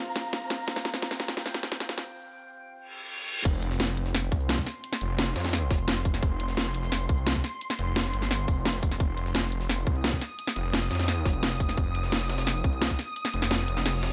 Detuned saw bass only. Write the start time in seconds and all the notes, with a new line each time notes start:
3.45 F1
4.32 C2
5.01 F1
5.36 F2
5.70 F1
6.23 F1
7.09 C2
7.79 F1
8.13 G1
8.48 F1
9.00 F1
9.87 C2
10.56 F1
10.91 F2
11.25 F1
11.77 F1
12.64 C2
13.34 F1
13.68 F1